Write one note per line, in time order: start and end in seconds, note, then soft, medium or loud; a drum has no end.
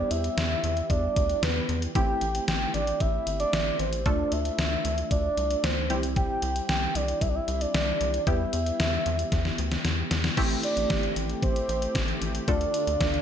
0.00 1.91 G3 medium
0.00 1.91 B3 medium
0.00 1.91 E4 medium
0.00 1.91 G4 medium
0.00 0.12 D5 loud
0.11 0.29 E2 medium
0.11 0.91 E5 loud
0.11 closed hi-hat medium
0.24 closed hi-hat medium
0.37 0.56 E2 loud
0.37 snare loud
0.37 closed hi-hat medium
0.64 0.82 E2 loud
0.64 closed hi-hat medium
0.77 closed hi-hat soft
0.89 1.08 E2 loud
0.89 1.44 D5 loud
0.89 kick medium
0.89 closed hi-hat medium
1.16 1.35 D2 medium
1.16 kick medium
1.16 closed hi-hat medium
1.29 closed hi-hat soft
1.42 1.61 E2 loud
1.42 1.82 B4 medium
1.42 snare loud
1.42 closed hi-hat medium
1.69 1.87 E2 loud
1.69 closed hi-hat medium
1.82 closed hi-hat medium
1.95 2.14 A1 loud
1.95 4.02 A3 medium
1.95 4.02 C4 medium
1.95 4.02 E4 medium
1.95 4.02 G4 medium
1.95 2.44 G5 loud
1.95 kick loud
1.95 closed hi-hat medium
2.21 2.40 A1 loud
2.21 closed hi-hat medium
2.35 closed hi-hat medium
2.48 2.66 A1 loud
2.48 2.72 G5 loud
2.48 snare loud
2.48 closed hi-hat medium
2.74 2.93 A1 medium
2.74 3.02 D5 medium
2.74 closed hi-hat medium
2.87 closed hi-hat soft
3.00 3.19 A1 loud
3.00 3.39 E5 medium
3.00 kick medium
3.00 closed hi-hat medium
3.27 3.45 G1 medium
3.27 closed hi-hat medium
3.40 3.77 D5 loud
3.40 closed hi-hat soft
3.53 3.72 A1 loud
3.53 snare loud
3.53 closed hi-hat medium
3.79 4.07 A1 loud
3.79 4.07 C5 medium
3.79 closed hi-hat medium
3.93 closed hi-hat medium
4.06 4.24 D2 loud
4.06 5.86 A3 medium
4.06 5.86 D4 medium
4.06 5.86 F4 medium
4.06 5.86 A4 medium
4.06 4.34 D5 medium
4.06 kick loud
4.06 closed hi-hat medium
4.32 4.50 D2 loud
4.32 5.11 E5 loud
4.32 closed hi-hat medium
4.45 closed hi-hat medium
4.58 4.77 D2 loud
4.58 snare loud
4.58 closed hi-hat medium
4.85 5.03 D2 medium
4.85 closed hi-hat medium
4.98 closed hi-hat soft
5.11 5.29 D2 loud
5.11 5.65 D5 loud
5.11 kick medium
5.11 closed hi-hat medium
5.37 5.56 C2 medium
5.37 closed hi-hat medium
5.51 closed hi-hat soft
5.64 5.91 D2 loud
5.64 6.03 C5 medium
5.64 snare loud
5.64 closed hi-hat medium
5.90 6.27 C2 loud
5.90 8.23 G3 medium
5.90 8.23 C4 medium
5.90 8.23 E4 medium
5.90 8.23 G4 medium
5.90 closed hi-hat medium
6.03 closed hi-hat medium
6.16 6.65 G5 loud
6.16 kick loud
6.16 closed hi-hat medium
6.42 6.61 C2 loud
6.42 closed hi-hat medium
6.56 closed hi-hat medium
6.69 6.87 C2 loud
6.69 6.97 G5 medium
6.69 snare loud
6.69 closed hi-hat medium
6.95 7.14 C2 loud
6.95 7.23 D5 medium
6.95 closed hi-hat medium
7.08 closed hi-hat soft
7.21 7.40 C2 loud
7.21 7.30 E5 medium
7.21 kick medium
7.21 closed hi-hat medium
7.29 7.37 D5 medium
7.35 7.62 E5 loud
7.48 7.66 C2 medium
7.48 closed hi-hat medium
7.61 8.26 D5 loud
7.61 closed hi-hat medium
7.74 7.93 C2 medium
7.74 snare loud
7.74 closed hi-hat medium
8.01 8.19 C2 loud
8.01 closed hi-hat medium
8.14 closed hi-hat medium
8.27 8.45 E2 loud
8.27 10.33 G3 medium
8.27 10.33 B3 medium
8.27 10.33 E4 medium
8.27 10.33 G4 medium
8.27 9.81 E5 loud
8.27 kick loud
8.27 closed hi-hat medium
8.53 8.72 E2 medium
8.53 closed hi-hat medium
8.66 closed hi-hat medium
8.80 8.98 E2 loud
8.80 snare loud
8.80 closed hi-hat medium
9.06 9.24 E2 loud
9.06 closed hi-hat medium
9.19 closed hi-hat soft
9.32 9.51 E2 loud
9.32 kick medium
9.32 snare medium
9.32 closed hi-hat medium
9.45 snare medium
9.58 9.77 D2 medium
9.58 closed hi-hat medium
9.71 snare medium
9.71 closed hi-hat soft
9.85 10.03 E2 loud
9.85 snare medium
9.85 closed hi-hat medium
10.11 10.30 E2 loud
10.11 snare loud
10.11 closed hi-hat medium
10.24 snare medium
10.24 closed hi-hat medium
10.37 10.56 A1 loud
10.37 12.44 A3 medium
10.37 12.46 A3 medium
10.37 12.46 C4 medium
10.37 12.44 C4 medium
10.37 12.44 E4 medium
10.37 12.44 G4 medium
10.37 12.46 G4 medium
10.37 kick loud
10.37 closed hi-hat medium
10.37 crash medium
10.50 closed hi-hat medium
10.63 11.13 D5 loud
10.63 closed hi-hat medium
10.77 10.86 A1 medium
10.77 closed hi-hat medium
10.90 11.08 A1 loud
10.90 kick loud
10.90 snare loud
10.90 closed hi-hat medium
11.03 closed hi-hat soft
11.16 11.35 A1 medium
11.16 closed hi-hat medium
11.29 closed hi-hat soft
11.42 11.61 A1 medium
11.42 12.17 C5 loud
11.42 kick loud
11.42 closed hi-hat medium
11.56 closed hi-hat medium
11.69 11.87 A1 loud
11.69 closed hi-hat medium
11.82 closed hi-hat soft
11.95 12.14 A1 loud
11.95 kick loud
11.95 snare loud
11.95 closed hi-hat medium
12.08 closed hi-hat soft
12.22 12.40 A1 loud
12.22 closed hi-hat medium
12.35 closed hi-hat medium
12.48 12.66 D2 loud
12.48 13.22 D3 medium
12.48 13.22 A3 medium
12.48 13.22 D4 medium
12.48 13.22 F4 medium
12.48 13.22 A4 medium
12.48 13.22 D5 medium
12.48 kick loud
12.48 closed hi-hat medium
12.61 closed hi-hat medium
12.74 closed hi-hat medium
12.87 12.97 D2 loud
12.87 closed hi-hat medium
13.01 13.19 D2 loud
13.01 kick loud
13.01 snare loud
13.01 closed hi-hat medium
13.14 closed hi-hat soft